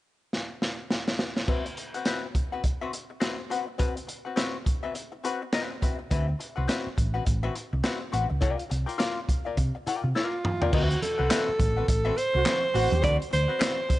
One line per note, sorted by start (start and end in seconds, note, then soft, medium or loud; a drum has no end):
0.33 snare medium
0.62 snare medium
0.90 snare medium
1.08 snare medium
1.19 snare medium
1.37 snare medium
1.48 1.67 C4 medium
1.48 1.66 F#4 medium
1.48 1.65 B4 medium
1.48 1.65 E5 medium
1.48 kick loud
1.48 crash medium
1.66 muted hollow-body jazz guitar stroke soft
1.66 closed hi-hat soft
1.77 muted hollow-body jazz guitar stroke soft
1.77 closed hi-hat medium
1.94 2.05 C4 soft
1.94 2.05 F#4 soft
1.94 2.06 B4 soft
1.94 2.05 F#5 medium
1.94 closed hi-hat soft
2.05 2.25 C4 medium
2.05 2.25 F#4 medium
2.05 2.26 B4 medium
2.05 2.26 E5 medium
2.05 snare loud
2.05 closed hi-hat medium
2.35 muted hollow-body jazz guitar stroke soft
2.35 kick medium
2.35 closed hi-hat medium
2.52 2.63 C4 soft
2.52 2.63 F#4 soft
2.52 2.63 B4 medium
2.52 2.63 F#5 medium
2.64 muted hollow-body jazz guitar stroke soft
2.64 kick medium
2.64 closed hi-hat medium
2.81 2.92 C4 medium
2.81 2.92 F#4 medium
2.81 2.93 B4 medium
2.81 2.93 E5 medium
2.93 muted hollow-body jazz guitar stroke soft
2.93 closed hi-hat medium
3.10 muted hollow-body jazz guitar stroke soft
3.20 3.40 C4 medium
3.20 3.38 F#4 medium
3.20 3.37 B4 medium
3.20 3.37 E5 medium
3.20 snare loud
3.20 closed hi-hat medium
3.38 muted hollow-body jazz guitar stroke soft
3.50 3.66 C4 medium
3.50 3.66 F#4 medium
3.50 3.66 B4 medium
3.50 3.66 F#5 medium
3.50 closed hi-hat medium
3.67 muted hollow-body jazz guitar stroke soft
3.78 3.98 C4 medium
3.78 3.96 F#4 medium
3.78 3.96 B4 medium
3.78 3.96 F#5 medium
3.78 kick loud
3.78 closed hi-hat medium
3.96 muted hollow-body jazz guitar stroke soft
3.96 closed hi-hat soft
4.07 muted hollow-body jazz guitar stroke soft
4.07 closed hi-hat medium
4.25 4.35 C4 soft
4.25 4.35 F#4 soft
4.25 4.35 B4 soft
4.25 4.36 F#5 soft
4.36 4.56 C4 medium
4.36 4.56 F#4 medium
4.36 4.56 B4 medium
4.36 4.57 E5 loud
4.36 snare loud
4.36 closed hi-hat medium
4.65 muted hollow-body jazz guitar stroke soft
4.65 kick medium
4.65 closed hi-hat medium
4.83 4.93 C4 soft
4.83 4.93 F#4 soft
4.83 4.94 B4 medium
4.83 4.94 E5 medium
4.94 muted hollow-body jazz guitar stroke soft
4.94 closed hi-hat medium
5.12 muted hollow-body jazz guitar stroke soft
5.24 5.43 C4 medium
5.24 5.42 F#4 medium
5.24 5.41 B4 medium
5.24 5.42 F#5 medium
5.24 closed hi-hat medium
5.42 muted hollow-body jazz guitar stroke soft
5.53 5.75 C4 medium
5.53 5.71 F#4 medium
5.53 5.70 B4 medium
5.53 5.69 E5 medium
5.53 snare loud
5.53 closed hi-hat medium
5.70 muted hollow-body jazz guitar stroke soft
5.82 5.98 C4 medium
5.82 5.98 F#4 medium
5.82 5.98 B4 medium
5.82 5.97 E5 medium
5.82 kick medium
5.82 closed hi-hat medium
5.99 muted hollow-body jazz guitar stroke soft
6.11 6.32 D2 medium
6.11 6.30 C4 medium
6.11 6.28 F#4 medium
6.11 6.28 B4 medium
6.11 6.27 E5 medium
6.11 kick loud
6.11 closed hi-hat medium
6.28 muted hollow-body jazz guitar stroke soft
6.39 muted hollow-body jazz guitar stroke soft
6.39 closed hi-hat medium
6.56 6.66 C2 medium
6.56 6.66 C4 soft
6.56 6.67 F#4 soft
6.56 6.67 B4 medium
6.56 6.67 F#5 medium
6.68 6.87 C4 medium
6.68 6.88 F#4 loud
6.68 6.88 B4 medium
6.68 6.88 E5 loud
6.68 snare medium
6.68 closed hi-hat medium
6.87 muted fingered electric bass stroke soft
6.96 7.19 A1 medium
6.96 muted hollow-body jazz guitar stroke soft
6.96 kick medium
6.96 closed hi-hat medium
7.14 7.24 C4 soft
7.14 7.24 F#4 medium
7.14 7.25 B4 medium
7.14 7.25 F#5 medium
7.25 7.48 A1 medium
7.25 muted hollow-body jazz guitar stroke soft
7.25 kick medium
7.25 closed hi-hat medium
7.43 7.54 C4 medium
7.43 7.55 F#4 medium
7.43 7.55 B4 medium
7.43 7.55 E5 medium
7.55 muted hollow-body jazz guitar stroke soft
7.55 closed hi-hat medium
7.73 7.81 C2 medium
7.73 muted hollow-body jazz guitar stroke soft
7.83 8.03 C4 medium
7.83 8.00 F#4 medium
7.83 8.00 B4 medium
7.83 7.99 E5 medium
7.83 snare loud
7.83 closed hi-hat medium
8.00 muted hollow-body jazz guitar stroke soft
8.12 8.26 A1 medium
8.12 8.28 C4 medium
8.12 8.29 F#4 medium
8.12 8.29 B4 medium
8.12 8.29 F#5 medium
8.12 closed hi-hat medium
8.29 8.42 C#2 medium
8.29 muted hollow-body jazz guitar stroke soft
8.41 8.55 C2 loud
8.41 8.63 F4 medium
8.41 8.58 A#4 medium
8.41 8.57 D5 medium
8.41 8.57 G5 medium
8.41 kick loud
8.41 closed hi-hat medium
8.58 muted hollow-body jazz guitar stroke soft
8.58 closed hi-hat soft
8.70 8.84 C2 medium
8.70 muted hollow-body jazz guitar stroke soft
8.70 closed hi-hat medium
8.86 8.97 F4 medium
8.86 8.98 A#4 medium
8.86 8.98 D5 soft
8.86 8.98 G5 medium
8.86 closed hi-hat soft
8.98 9.18 F4 medium
8.98 9.18 A#4 loud
8.98 9.19 D5 loud
8.98 9.19 F5 loud
8.98 snare loud
8.98 closed hi-hat loud
9.28 muted hollow-body jazz guitar stroke soft
9.28 kick medium
9.28 closed hi-hat medium
9.45 9.56 F4 soft
9.45 9.57 A#4 medium
9.45 9.56 D5 soft
9.45 9.56 F5 medium
9.57 9.70 C3 medium
9.57 muted hollow-body jazz guitar stroke soft
9.57 kick medium
9.57 closed hi-hat medium
9.75 muted hollow-body jazz guitar stroke soft
9.86 10.08 F4 medium
9.86 10.04 A#4 medium
9.86 10.03 D5 medium
9.86 10.03 G5 medium
9.86 muted fingered electric bass stroke soft
9.86 closed hi-hat medium
10.04 10.12 C3 medium
10.04 muted hollow-body jazz guitar stroke soft
10.15 10.37 F4 medium
10.15 10.76 F4 medium
10.15 10.37 A#4 medium
10.15 10.38 D5 medium
10.15 10.38 F5 medium
10.15 snare medium
10.44 muted hollow-body jazz guitar stroke soft
10.44 mid tom medium
10.61 10.72 F4 medium
10.61 10.72 A#4 medium
10.61 10.72 D5 medium
10.61 10.72 G5 medium
10.61 floor tom medium
10.73 10.94 D2 loud
10.73 10.95 C4 medium
10.73 10.90 F#4 medium
10.73 11.02 F#4 medium
10.73 10.89 B4 loud
10.73 10.89 E5 loud
10.73 kick loud
10.73 crash loud
10.73 muted conga medium
10.90 muted hollow-body jazz guitar stroke medium
10.90 closed hi-hat soft
11.02 11.85 A4 medium
11.02 muted hollow-body jazz guitar stroke soft
11.02 closed hi-hat medium
11.02 muted conga medium
11.18 11.28 C2 medium
11.18 11.28 C4 medium
11.18 11.29 F#4 soft
11.18 11.29 B4 medium
11.18 11.29 F#5 medium
11.30 11.49 C4 medium
11.30 11.50 F#4 medium
11.30 11.50 B4 loud
11.30 11.50 E5 loud
11.30 snare loud
11.30 clap medium
11.30 closed hi-hat loud
11.30 high conga medium
11.49 muted fingered electric bass stroke soft
11.59 11.81 A1 medium
11.59 muted hollow-body jazz guitar stroke soft
11.59 kick loud
11.59 closed hi-hat medium
11.59 muted conga medium
11.77 11.87 C4 medium
11.77 11.87 F#4 soft
11.77 11.88 B4 medium
11.77 11.87 F#5 medium
11.88 12.09 A1 loud
11.88 12.19 A4 medium
11.88 muted hollow-body jazz guitar stroke soft
11.88 kick loud
11.88 closed hi-hat medium
12.05 12.15 C4 medium
12.05 12.16 F#4 medium
12.05 12.16 B4 medium
12.05 12.16 E5 medium
12.16 13.04 C5 loud
12.16 muted hollow-body jazz guitar stroke medium
12.16 closed hi-hat medium
12.34 12.43 C2 loud
12.34 12.43 F#4 medium
12.34 muted hollow-body jazz guitar stroke medium
12.45 12.65 C4 medium
12.45 12.63 F#4 medium
12.45 12.62 B4 medium
12.45 12.62 E5 medium
12.45 snare loud
12.45 clap loud
12.45 closed hi-hat medium
12.45 high conga medium
12.63 muted hollow-body jazz guitar stroke soft
12.74 12.87 A1 medium
12.74 12.90 C4 medium
12.74 12.90 F#4 medium
12.74 13.14 F#4 loud
12.74 12.90 B4 medium
12.74 12.90 F#5 medium
12.74 open hi-hat medium
12.91 13.00 D#2 medium
12.91 muted hollow-body jazz guitar stroke medium
12.91 closed hi-hat soft
12.91 high conga medium
13.02 13.16 D2 loud
13.02 13.22 C4 medium
13.02 13.19 F#4 medium
13.02 13.19 B4 medium
13.02 13.17 D5 loud
13.02 13.19 F#5 medium
13.02 kick loud
13.02 closed hi-hat medium
13.02 muted conga medium
13.19 muted hollow-body jazz guitar stroke soft
13.19 closed hi-hat soft
13.30 13.45 D2 medium
13.30 13.99 C5 loud
13.30 muted hollow-body jazz guitar stroke soft
13.30 closed hi-hat medium
13.30 muted conga soft
13.48 13.58 C4 soft
13.48 13.58 F#4 soft
13.48 13.59 B4 medium
13.48 13.59 F#5 medium
13.59 13.79 C4 medium
13.59 13.79 F#4 medium
13.59 13.80 B4 medium
13.59 13.80 E5 medium
13.59 snare loud
13.59 clap medium
13.59 closed hi-hat loud
13.59 high conga medium
13.88 muted hollow-body jazz guitar stroke soft
13.88 kick loud
13.88 closed hi-hat medium
13.88 muted conga medium